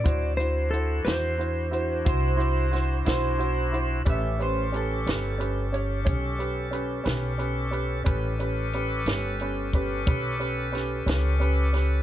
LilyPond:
<<
  \new Staff \with { instrumentName = "Clean electric guitar" } { \time 12/8 \key a \mixolydian \tempo 4. = 60 r2. c''4. c''4. | e''8 c''8 a'2 r2. | r1. | }
  \new Staff \with { instrumentName = "Electric slide guitar" } { \time 12/8 \key a \mixolydian d''8 c''8 a'8 c''1 r8 | r1. | r1. | }
  \new Staff \with { instrumentName = "Tonewheel organ" } { \time 12/8 \key a \mixolydian <d' e' fis' c''>1. | <cis' g' a'>1. | <cis' g' a' b'>1. | }
  \new Staff \with { instrumentName = "Upright piano" } { \time 12/8 \key a \mixolydian <e' fis' c''>8 <e' fis' c''>8 <e' fis' c''>8 <e' fis' c''>8 <e' fis' c''>8 <e' fis' c''>8 <e' fis' c''>8 <e' fis' c''>8 <e' fis' c''>8 <e' fis' c''>8 <e' fis' c''>8 <e' fis' c''>8 | <cis' g' b'>8 <cis' g' b'>8 <cis' g' b'>8 <cis' g' b'>8 <cis' g' b'>8 <cis' g' cis''>8 <cis' g' cis''>8 <cis' g' b'>8 <cis' g' b'>8 <cis' g' b'>8 <cis' g' b'>8 <cis' g' b'>8 | <cis' g' b'>8 <cis' g' b'>8 <cis' g' b'>8 <cis' g' b'>8 <cis' g' b'>8 <cis' g' b'>8 <cis' g' b'>8 <cis' g' b'>8 <cis' g' b'>8 <cis' g' b'>8 <cis' g' b'>8 <cis' g' b'>8 | }
  \new Staff \with { instrumentName = "Upright bass" } { \clef bass \time 12/8 \key a \mixolydian d,4. e,4. c,4. b,,4. | a,,4. g,,4. b,,4. b,,4. | a,,4. g,,4. b,,4. cis,4. | }
  \new DrumStaff \with { instrumentName = "Drums" } \drummode { \time 12/8 <hh bd>8 hh8 hh8 <hh sn>8 hh8 hh8 <hh bd>8 hh8 <hh sn>8 <hh sn>8 hh8 hh8 | <hh bd>8 hh8 hh8 <hh sn>8 hh8 hh8 <hh bd>8 hh8 hh8 <hh sn>8 hh8 hh8 | <hh bd>8 hh8 hh8 <hh sn>8 hh8 <hh bd>8 <hh bd>8 hh8 <hh sn>8 <hh sn>8 hh8 <hh sn>8 | }
>>